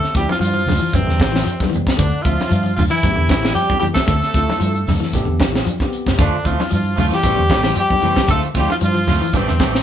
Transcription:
Already playing: A3 A4
0.03 snare, closed hi-hat
0.15 D2 F3 G3 C4 E4 G4, kick, snare, closed hi-hat, shekere
0.29 F3 F4, snare, closed hi-hat, high conga
0.39 G2 F3 F4, closed hi-hat, shekere
0.43 F3 F4
0.54 F3, closed hi-hat
0.66 D2, snare, open hi-hat, high conga, low conga, shekere
0.79 E3
0.93 A1 C3 G3 C4 B4, kick, closed hi-hat, low conga, shekere
1.07 E2 D3, snare
1.20 A1, kick, snare, closed hi-hat, high conga, shekere
1.32 E3, snare
1.44 F3, closed hi-hat, shekere
1.60 G3 B3 C4, kick, snare, closed hi-hat, high conga
1.70 E3, closed hi-hat, shekere
1.75 low conga
1.87 kick, snare, closed hi-hat
1.97 D2 D3 D4, kick, closed hi-hat, low conga, shekere
2.01 D4
2.22 D2 F3 C4 F4 E5, kick, closed hi-hat, shekere
2.40 snare, closed hi-hat, high conga
2.49 G2 F3, closed hi-hat, shekere
2.64 F3, closed hi-hat
2.76 D2 F3 F4, open hi-hat, high conga, low conga, shekere
2.90 E3 E4
3.03 A1 B3 C4 G4, kick, closed hi-hat, high conga, shekere
3.16 E2 D3
3.29 A1, kick, snare, closed hi-hat, high conga, shekere
3.43 E3, snare
3.52 F3 G3 G4, shekere
3.56 closed hi-hat
3.70 B3 C4 G4, kick, high conga
3.78 E3 G3 G4, closed hi-hat, shekere
3.83 low conga
3.93 A3 A4, kick, snare, closed hi-hat
4.07 D2 D3, kick, snare, closed hi-hat, shekere
4.22 snare, closed hi-hat
4.34 D2 C4 E4 F4, kick, snare, closed hi-hat, shekere
4.49 snare, closed hi-hat, high conga
4.60 G2 F3, closed hi-hat, shekere
4.75 closed hi-hat
4.87 D2, snare, open hi-hat, high conga, low conga, shekere
5.00 E3, snare
5.13 A1 B3 C4 G4, kick, snare, closed hi-hat, low conga, shekere
5.25 E2 D3
5.39 A1, kick, snare, closed hi-hat, high conga, shekere
5.52 E3, snare
5.65 F3, closed hi-hat, high conga, shekere
5.80 B3 C4 G4, kick, snare, closed hi-hat, high conga
5.93 closed hi-hat, shekere
6.06 kick, snare, closed hi-hat, low conga
6.18 D2 D3 F3 A3 C4 D4 F4, kick, closed hi-hat, low conga, shekere
6.45 D2 F3 A3 C4 E4 F4, muted clean electric guitar stroke, kick, closed hi-hat, shekere
6.59 snare, closed hi-hat, high conga
6.71 G2 F3 F4, closed hi-hat, shekere
6.75 F4
6.85 closed hi-hat
6.96 D2 F3 A3 C4 F4, open hi-hat, high conga, low conga, shekere
7.11 E3 G3 G4, snare
7.16 G4
7.23 A1 E3 A3 B3 C4 G4, kick, snare, closed hi-hat, shekere
7.36 E2 D3
7.49 A1 E3 A3 G4, kick, snare, closed hi-hat, high conga, shekere
7.64 E3 A3 C4 G4, snare
7.75 F3 G3 G4, closed hi-hat, shekere
7.80 G4
7.90 B3 C4 G4, kick, high conga
8.02 E3 A3 C4 G4, closed hi-hat, low conga, shekere
8.16 kick, snare, closed hi-hat, high conga
8.28 D2 D3 A3 C4 F4 A4, kick, closed hi-hat, shekere
8.43 closed hi-hat
8.54 D2 F3 G3 A3 C4 E4 F4 G4, kick, snare, closed hi-hat, shekere
8.59 G4
8.68 F3 F4, snare, closed hi-hat, high conga
8.81 G2 F3 F4, closed hi-hat, shekere
8.85 F4
8.95 F3, closed hi-hat
9.07 D2 A3 C4 F4, snare, open hi-hat, high conga, low conga, shekere
9.21 E3
9.33 A1 C3 E3 G3 A3 C4 G4 B4, kick, closed hi-hat, high conga, low conga, shekere
9.48 E2 D3, snare
9.59 A1 E3 A3 C4 G4, kick, snare, closed hi-hat, high conga, shekere
9.74 muted clean electric guitar stroke, snare

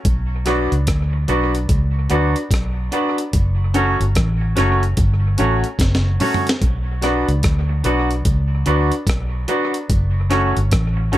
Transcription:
0.05 B1, kick, closed hi-hat
0.45 F#3 B3 D4 F#4 B4 D5, cross-stick, closed hi-hat
0.72 C#2, closed hi-hat
0.87 D2, kick, cross-stick, closed hi-hat
1.13 muted clean electric guitar stroke
1.28 B1 F#3 B3 D4 F#4 B4 D5, closed hi-hat
1.55 closed hi-hat
1.69 C#2, kick, closed hi-hat
2.09 D2 F#3 B3 D4 F#4 B4 D5, closed hi-hat
2.36 closed hi-hat
2.51 B1, kick, cross-stick, closed hi-hat
2.92 F#3 B3 D4 F#4 B4 D5, closed hi-hat
3.18 closed hi-hat
3.33 F#1, kick, closed hi-hat
3.74 F#3 A3 C#4 F#4 A4 C#5, closed hi-hat
4.00 G1, closed hi-hat
4.15 A1, kick, cross-stick, closed hi-hat
4.41 muted clean electric guitar stroke
4.56 F#1 F#3 A3 C#4 F#4 A4 C#5, cross-stick, closed hi-hat
4.83 closed hi-hat
4.97 G1, kick, closed hi-hat
5.38 A1 F#3 A3 C#4 F#4 A4 C#5, closed hi-hat
5.64 closed hi-hat
5.79 F#1, kick, snare, closed hi-hat
5.95 snare
6.20 F#3 A3 C#4 F#4 A4 C#5, mid tom, open hi-hat
6.34 floor tom
6.47 snare, closed hi-hat
6.62 B1, kick, closed hi-hat
7.01 F#3 B3 D4 F#4 B4 D5, cross-stick, closed hi-hat
7.28 C#2, closed hi-hat
7.43 D2, kick, cross-stick, closed hi-hat
7.69 muted clean electric guitar stroke
7.84 B1 F#3 B3 D4 F#4 B4 D5, closed hi-hat
8.11 closed hi-hat
8.25 C#2, kick, closed hi-hat
8.66 D2 F#3 B3 D4 F#4 B4 D5, closed hi-hat
8.92 closed hi-hat
9.07 B1, kick, cross-stick, closed hi-hat
9.48 F#3 B3 D4 F#4 B4 D5, closed hi-hat
9.74 closed hi-hat
9.90 F#1, kick, closed hi-hat
10.30 F#3 A3 C#4 F#4 A4 C#5, cross-stick, closed hi-hat
10.57 G1, closed hi-hat
10.71 A1, kick, cross-stick, closed hi-hat
10.97 muted clean electric guitar stroke
11.12 F#1 F#3 A3 C#4 F#4 A4 C#5, closed hi-hat

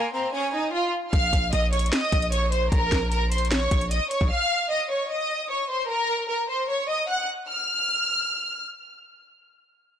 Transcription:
Already playing: A#3 A#4 G#5
0.14 C4 C5 A#5
0.33 C#4 C#5 G#5
0.53 D#4 D#5
0.73 F4 F5
1.13 A#1 F5 F6, kick, closed hi-hat
1.33 A#1, kick, closed hi-hat
1.53 A#1 D#5 D#6, closed hi-hat
1.73 C#5 C#6, closed hi-hat
1.79 closed hi-hat
1.86 closed hi-hat
1.92 D#5 D#6, finger snap, snare, closed hi-hat
2.12 A#1, kick, closed hi-hat
2.22 closed hi-hat
2.32 C#5 C#6, closed hi-hat
2.52 C5 C6, closed hi-hat
2.72 A#1 A#4 A#5, kick, closed hi-hat
2.92 A#1, finger snap, kick, snare, closed hi-hat
3.12 A#4 A#5, closed hi-hat
3.32 C5 C6, closed hi-hat
3.38 closed hi-hat
3.45 closed hi-hat
3.51 C#5 C#6, finger snap, snare, closed hi-hat
3.71 A#1, kick, closed hi-hat
3.81 closed hi-hat
3.91 D#5 D#6, closed hi-hat
4.11 C#5 C#6, closed hi-hat
4.21 A#1, kick
4.31 F5 F6
4.71 D#5 D#6
4.90 C#5 C#6
5.10 D#5 D#6
5.50 C#5 C#6
5.70 C5 C6
5.90 A#4 A#5
6.30 A#4 A#5
6.49 C5 C6
6.69 C#5 C#6
6.89 D#5 D#6
7.09 F#5 F#6
7.49 F6

